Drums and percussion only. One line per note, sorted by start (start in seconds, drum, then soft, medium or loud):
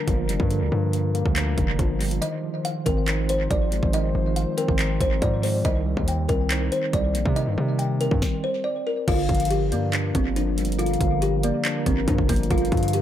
0.08 kick loud
0.08 closed hi-hat medium
0.29 closed hi-hat medium
0.40 kick medium
0.51 closed hi-hat medium
0.93 closed hi-hat medium
1.15 closed hi-hat medium
1.26 kick medium
1.36 clap loud
1.36 closed hi-hat medium
1.58 kick loud
1.58 closed hi-hat medium
1.79 kick loud
1.79 closed hi-hat medium
2.01 closed hi-hat medium
2.01 open hi-hat medium
2.11 closed hi-hat medium
2.22 closed hi-hat medium
2.65 closed hi-hat medium
2.86 kick medium
2.86 closed hi-hat medium
3.08 clap loud
3.08 closed hi-hat medium
3.29 closed hi-hat medium
3.51 kick loud
3.51 closed hi-hat medium
3.72 closed hi-hat medium
3.83 kick medium
3.93 closed hi-hat medium
4.36 closed hi-hat medium
4.58 closed hi-hat medium
4.68 kick medium
4.79 clap loud
4.79 closed hi-hat medium
5.01 kick loud
5.01 closed hi-hat medium
5.22 kick loud
5.22 closed hi-hat medium
5.43 open hi-hat medium
5.65 kick loud
5.65 closed hi-hat medium
5.97 kick medium
6.08 closed hi-hat medium
6.29 kick medium
6.29 closed hi-hat medium
6.51 clap loud
6.51 closed hi-hat medium
6.72 closed hi-hat medium
6.93 kick loud
6.93 closed hi-hat medium
7.15 closed hi-hat medium
7.26 kick medium
7.36 closed hi-hat medium
7.79 closed hi-hat medium
8.01 closed hi-hat medium
8.11 kick loud
8.22 kick loud
8.22 snare medium
9.08 kick loud
9.08 closed hi-hat medium
9.08 crash loud
9.29 kick loud
9.29 closed hi-hat soft
9.35 closed hi-hat medium
9.40 closed hi-hat medium
9.45 closed hi-hat medium
9.51 closed hi-hat medium
9.72 closed hi-hat medium
9.93 clap loud
9.93 closed hi-hat medium
10.15 kick loud
10.15 closed hi-hat medium
10.36 closed hi-hat medium
10.58 closed hi-hat medium
10.65 closed hi-hat medium
10.72 closed hi-hat medium
10.79 closed hi-hat medium
10.86 closed hi-hat medium
10.94 closed hi-hat soft
11.01 kick loud
11.01 closed hi-hat medium
11.22 closed hi-hat medium
11.43 closed hi-hat medium
11.65 clap loud
11.65 closed hi-hat medium
11.86 kick loud
11.86 closed hi-hat medium
12.08 kick loud
12.08 closed hi-hat medium
12.18 kick loud
12.29 kick loud
12.29 closed hi-hat medium
12.29 open hi-hat medium
12.36 closed hi-hat medium
12.43 closed hi-hat medium
12.51 kick loud
12.51 closed hi-hat medium
12.58 closed hi-hat medium
12.65 closed hi-hat soft
12.72 kick loud
12.72 closed hi-hat soft
12.77 closed hi-hat medium
12.83 closed hi-hat medium
12.88 closed hi-hat medium
12.93 closed hi-hat medium